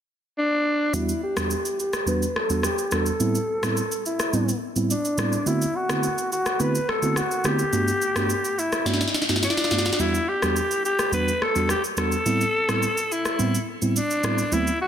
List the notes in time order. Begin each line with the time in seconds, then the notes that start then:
0.38 D4
0.93 E2 G3 B3 D4 E4 F#4, shaker
1.09 shaker
1.23 G4
1.36 E2 G3 B3 D4 F#4, cross-stick, shaker
1.51 shaker
1.65 shaker
1.80 G4, shaker
1.93 cross-stick, shaker
2.07 E2 G3 B3 D4 F#4 B4, shaker
2.22 shaker
2.36 A4, cross-stick
2.50 E2 G3 B3 D4 F#4, shaker
2.63 G4, cross-stick, shaker
2.78 shaker
2.91 E2 G3 B3 D4 F#4 A4, cross-stick, shaker
3.06 shaker
3.20 A2 G3 B3 C4 E4, shaker
3.35 shaker
3.63 A2 G3 B3 C4 E4, cross-stick, shaker
3.77 shaker
3.92 shaker
4.06 E4, shaker
4.19 cross-stick, shaker
4.33 A2 G3 B3 C4 E4, shaker
4.49 shaker
4.76 A2 G3 B3 C4 E4, shaker
4.91 D4, shaker
5.05 shaker
5.18 A2 G3 B3 C4 E4, cross-stick, shaker
5.32 shaker
5.46 D3 A3 B3 C4 E4 F#4, shaker
5.62 shaker
5.76 F#4
5.89 D3 A3 B3 C4 E4 F#4, cross-stick, shaker
6.03 shaker
6.18 shaker
6.32 F#4, shaker
6.46 cross-stick, shaker
6.59 D3 A3 B3 C4 E4 F#4 B4, shaker
6.75 shaker
6.89 A4, cross-stick
7.02 D3 A3 B3 C4 E4 F#4, shaker
7.16 F#4, cross-stick, shaker
7.31 shaker
7.44 D3 A3 B3 C4 E4 F#4 G4, cross-stick, shaker
7.59 shaker
7.73 G2 A3 B3 D4 F#4, shaker
7.88 shaker
8.02 shaker
8.16 G2 A3 B3 D4 F#4, cross-stick, shaker
8.30 shaker
8.44 shaker
8.59 E4, shaker
8.72 cross-stick, shaker
8.86 G2 A3 B3 D4 F#4, snare, shaker
8.94 snare
9.01 snare, shaker
9.08 snare
9.14 snare, shaker
9.22 snare
9.29 G2 A3 B3 D4 F#4, snare, shaker
9.36 snare
9.43 D4, snare, shaker
9.50 snare
9.57 snare, shaker
9.64 snare
9.71 G2 A3 B3 D4 F#4, snare, shaker
9.78 snare
9.85 snare, shaker
9.93 snare
9.99 E2 G3 B3 D4 E4 F#4, shaker
10.14 shaker
10.28 G4
10.42 E2 G3 B3 D4 F#4, cross-stick, shaker
10.56 shaker
10.71 shaker
10.85 G4, shaker
10.99 cross-stick, shaker
11.12 E2 G3 B3 D4 F#4 B4, shaker
11.28 shaker
11.42 A4, cross-stick
11.55 E2 G3 B3 D4 F#4, shaker
11.69 G4, cross-stick, shaker
11.84 shaker
11.97 E2 G3 B3 D4 F#4 A4, cross-stick, shaker
12.12 shaker
12.26 A2 G3 B3 C4 E4, shaker
12.41 shaker
12.69 A2 G3 B3 C4 E4, cross-stick, shaker
12.83 shaker
12.97 shaker
13.12 E4, shaker
13.25 cross-stick, shaker
13.39 A2 G3 B3 C4 E4, shaker
13.55 shaker
13.82 A2 G3 B3 C4 E4, shaker
13.96 D4, shaker
14.11 shaker
14.23 A2 G3 B3 C4 E4, cross-stick, shaker
14.38 shaker
14.52 D2 F#3 A3 B3 C4 E4, shaker
14.67 shaker
14.81 F#4